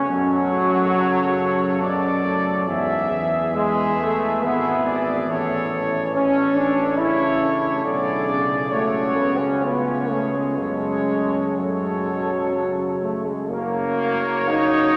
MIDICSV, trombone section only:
0, 0, Header, 1, 2, 480
1, 0, Start_track
1, 0, Key_signature, 3, "minor"
1, 0, Tempo, 865801
1, 56, Time_signature, 3, 2, 24, 8
1, 2938, Tempo, 841515
1, 3898, Tempo, 882353
1, 5338, Tempo, 970874
1, 7977, End_track
2, 0, Start_track
2, 0, Title_t, "Trombone section"
2, 0, Program_c, 0, 61
2, 50, Note_on_c, 0, 54, 109
2, 1226, Note_off_c, 0, 54, 0
2, 1966, Note_on_c, 0, 56, 101
2, 2194, Note_off_c, 0, 56, 0
2, 2210, Note_on_c, 0, 57, 103
2, 2457, Note_off_c, 0, 57, 0
2, 2459, Note_on_c, 0, 59, 101
2, 2940, Note_off_c, 0, 59, 0
2, 3420, Note_on_c, 0, 61, 103
2, 3642, Note_off_c, 0, 61, 0
2, 3651, Note_on_c, 0, 62, 102
2, 3892, Note_on_c, 0, 64, 106
2, 3895, Note_off_c, 0, 62, 0
2, 4369, Note_off_c, 0, 64, 0
2, 4848, Note_on_c, 0, 57, 87
2, 5074, Note_off_c, 0, 57, 0
2, 5087, Note_on_c, 0, 59, 83
2, 5204, Note_on_c, 0, 61, 87
2, 5213, Note_off_c, 0, 59, 0
2, 5335, Note_off_c, 0, 61, 0
2, 5336, Note_on_c, 0, 59, 78
2, 5570, Note_off_c, 0, 59, 0
2, 5570, Note_on_c, 0, 57, 72
2, 5688, Note_on_c, 0, 56, 69
2, 5690, Note_off_c, 0, 57, 0
2, 5800, Note_off_c, 0, 56, 0
2, 5806, Note_on_c, 0, 56, 84
2, 6283, Note_off_c, 0, 56, 0
2, 6298, Note_on_c, 0, 54, 62
2, 7009, Note_on_c, 0, 57, 67
2, 7013, Note_off_c, 0, 54, 0
2, 7123, Note_off_c, 0, 57, 0
2, 7133, Note_on_c, 0, 56, 75
2, 7247, Note_on_c, 0, 58, 115
2, 7253, Note_off_c, 0, 56, 0
2, 7742, Note_on_c, 0, 63, 115
2, 7743, Note_off_c, 0, 58, 0
2, 7977, Note_off_c, 0, 63, 0
2, 7977, End_track
0, 0, End_of_file